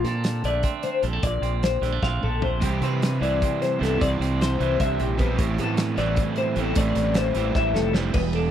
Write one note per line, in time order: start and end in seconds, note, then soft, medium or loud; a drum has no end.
0.00 0.44 A#2 medium
0.00 0.41 A#2 medium
0.00 0.44 D3 medium
0.00 1.06 F4 medium
0.04 0.63 C4 medium
0.04 0.44 A4 medium
0.04 snare soft
0.04 closed hi-hat medium
0.24 snare loud
0.24 closed hi-hat medium
0.44 0.62 A#1 loud
0.44 1.81 D3 medium
0.44 1.03 A3 medium
0.44 0.85 D5 medium
0.44 closed hi-hat medium
0.63 1.27 C4 medium
0.63 kick loud
0.63 closed hi-hat medium
0.83 1.02 C5 medium
0.83 closed hi-hat medium
1.02 1.22 A#1 medium
1.02 1.21 F2 medium
1.02 1.13 G3 medium
1.02 1.23 A4 medium
1.02 closed hi-hat medium
1.13 1.23 A3 medium
1.23 1.41 A#1 loud
1.23 1.83 A#2 medium
1.23 1.63 D5 medium
1.23 kick loud
1.23 closed hi-hat medium
1.41 1.79 A#1 medium
1.41 2.03 C4 medium
1.41 closed hi-hat medium
1.63 2.03 C5 medium
1.63 snare loud
1.63 closed hi-hat medium
1.82 2.01 A#1 medium
1.82 2.62 D3 medium
1.82 1.92 G3 medium
1.82 snare soft
1.82 closed hi-hat medium
1.92 2.41 A3 medium
2.02 2.21 A#1 loud
2.02 2.82 C4 medium
2.02 2.23 F5 medium
2.02 kick medium
2.02 snare medium
2.23 2.59 A#1 medium
2.23 2.43 A4 medium
2.23 mid tom medium
2.42 2.60 F2 medium
2.42 2.60 A3 soft
2.42 2.63 C5 medium
2.42 floor tom loud
2.60 2.81 C2 loud
2.60 3.23 C3 medium
2.60 3.22 C3 medium
2.60 3.23 E3 loud
2.60 3.22 G3 medium
2.60 3.21 C4 medium
2.60 3.20 E4 loud
2.60 2.84 G4 medium
2.60 kick loud
2.60 closed hi-hat loud
2.81 3.18 C3 medium
2.81 3.42 C4 medium
2.81 3.23 B4 medium
2.81 closed hi-hat medium
3.02 snare loud
3.02 closed hi-hat medium
3.21 3.40 C2 loud
3.21 3.78 C3 medium
3.21 4.60 E3 medium
3.21 3.80 E3 medium
3.21 3.81 G3 medium
3.21 3.81 C4 medium
3.21 3.82 E4 medium
3.21 3.61 D5 medium
3.21 closed hi-hat medium
3.42 4.21 C4 medium
3.42 kick loud
3.42 closed hi-hat medium
3.62 3.82 C5 medium
3.62 snare soft
3.62 closed hi-hat medium
3.79 3.99 C2 medium
3.79 3.98 G2 medium
3.79 3.97 C3 medium
3.79 3.99 E3 medium
3.79 3.99 G3 medium
3.79 4.03 B3 medium
3.79 4.00 C4 medium
3.79 4.01 E4 medium
3.79 4.01 A4 medium
3.79 closed hi-hat medium
3.84 snare soft
3.98 4.19 C2 loud
3.98 4.57 C3 medium
3.98 4.59 C3 medium
3.98 4.59 E3 loud
3.98 4.60 G3 loud
3.98 4.61 C4 loud
3.98 4.61 E4 loud
3.98 4.41 D5 medium
3.98 kick loud
3.98 closed hi-hat medium
4.20 4.57 C2 medium
4.20 5.59 C4 medium
4.20 closed hi-hat medium
4.41 4.80 C5 medium
4.41 snare loud
4.41 closed hi-hat medium
4.59 4.79 C2 medium
4.59 5.17 C3 medium
4.59 5.20 E3 medium
4.59 4.80 E3 medium
4.59 5.18 G3 medium
4.59 5.18 C4 medium
4.59 5.17 E4 medium
4.59 closed hi-hat medium
4.80 4.98 C2 loud
4.80 5.00 D3 medium
4.80 5.00 E5 medium
4.80 kick loud
4.80 closed hi-hat medium
4.99 5.36 A#1 loud
4.99 5.19 C3 medium
4.99 5.20 G4 medium
4.99 closed hi-hat medium
5.18 5.38 B2 medium
5.18 5.37 C3 medium
5.18 5.38 E3 medium
5.18 5.38 G3 medium
5.18 5.40 C4 medium
5.18 5.40 E4 medium
5.18 5.40 B4 medium
5.18 kick medium
5.18 closed hi-hat medium
5.38 5.57 A1 loud
5.38 5.99 A2 medium
5.38 6.57 A2 medium
5.38 5.98 E3 loud
5.38 5.97 A3 medium
5.38 5.97 C4 loud
5.38 5.95 E4 medium
5.38 5.60 G4 medium
5.38 kick loud
5.38 closed hi-hat medium
5.58 5.95 A2 medium
5.58 6.80 B3 medium
5.58 5.99 A4 medium
5.58 closed hi-hat medium
5.77 snare loud
5.77 closed hi-hat medium
5.96 6.16 A1 loud
5.96 6.55 A2 medium
5.96 7.36 E3 medium
5.96 6.56 E3 medium
5.96 6.59 G3 medium
5.96 6.56 A3 medium
5.96 6.56 C4 medium
5.96 6.59 E4 medium
5.96 6.37 D5 medium
5.96 snare soft
5.96 closed hi-hat medium
6.16 kick loud
6.16 closed hi-hat medium
6.36 6.59 C5 medium
6.36 closed hi-hat medium
6.56 6.75 A1 medium
6.56 6.77 E2 medium
6.56 6.74 A2 medium
6.56 6.76 E3 medium
6.56 7.35 G3 medium
6.56 6.76 A3 medium
6.56 6.77 C4 medium
6.56 6.78 E4 loud
6.56 6.78 A4 medium
6.56 closed hi-hat medium
6.75 6.95 A1 medium
6.75 7.33 A2 medium
6.75 7.95 A2 medium
6.75 7.34 E3 medium
6.75 7.35 A3 loud
6.75 7.35 C4 loud
6.75 7.36 E4 loud
6.75 7.17 D5 medium
6.75 kick loud
6.75 closed hi-hat loud
6.95 7.33 A1 medium
6.95 snare soft
6.95 closed hi-hat medium
7.14 7.56 C5 medium
7.14 snare loud
7.14 closed hi-hat medium
7.34 7.54 A1 medium
7.34 7.93 A2 medium
7.34 7.93 E3 medium
7.34 8.12 E3 medium
7.34 7.95 G3 medium
7.34 7.94 A3 medium
7.34 7.93 C4 medium
7.34 7.92 E4 medium
7.34 snare soft
7.34 closed hi-hat medium
7.55 7.73 A1 loud
7.55 7.75 E5 medium
7.55 kick loud
7.55 snare medium
7.74 8.11 F1 medium
7.74 7.94 A4 medium
7.74 snare medium
7.93 8.13 E2 medium
7.93 8.14 A2 medium
7.93 8.14 E3 medium
7.93 8.51 G3 medium
7.93 8.14 A3 medium
7.93 8.13 C4 medium
7.93 8.13 E4 medium
7.93 8.14 C5 medium
7.93 snare loud
8.14 8.51 E1 loud
8.14 8.51 E2 medium
8.14 8.34 B4 medium
8.14 kick loud
8.14 crash loud
8.33 8.51 D4 medium
8.33 8.51 A4 medium
8.33 ride medium